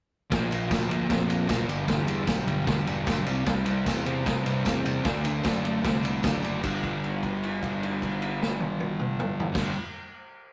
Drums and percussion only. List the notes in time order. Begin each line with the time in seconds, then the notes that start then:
0.32 kick, snare, ride, tambourine
0.51 ride, tambourine
0.71 kick, snare, ride, tambourine
0.81 tambourine
0.91 ride, tambourine
1.10 kick, snare, ride
1.19 tambourine
1.30 ride, tambourine
1.49 kick, snare, ride, tambourine
1.69 ride, tambourine
1.88 kick, snare, ride
2.07 ride, tambourine
2.27 kick, snare, ride, tambourine
2.37 tambourine
2.48 ride, tambourine
2.67 kick, snare, ride
2.77 tambourine
2.87 ride, tambourine
3.07 kick, snare, ride, tambourine
3.26 ride, tambourine
3.38 tambourine
3.46 kick, snare, ride, tambourine
3.66 ride, tambourine
3.86 kick, snare, ride, tambourine
3.97 tambourine
4.06 ride
4.26 kick, snare, ride
4.36 tambourine
4.46 ride, tambourine
4.65 kick, snare, ride, tambourine
4.85 ride, tambourine
4.95 tambourine
5.05 kick, snare, ride, tambourine
5.15 tambourine
5.24 ride, tambourine
5.43 kick, snare, ride, tambourine
5.53 tambourine
5.65 ride
5.73 tambourine
5.85 kick, snare, ride
5.93 tambourine
6.02 ride, tambourine
6.13 tambourine
6.23 kick, snare, ride, tambourine
6.33 tambourine
6.43 ride, tambourine
6.63 kick, crash, tambourine
6.84 kick, crash
7.04 crash
7.23 kick, crash
7.43 crash
7.63 kick, crash
7.83 crash
8.02 kick, crash
8.22 crash
8.42 snare
8.60 high tom
8.80 high tom
8.99 mid tom
9.20 mid tom
9.40 floor tom
9.55 kick, snare, crash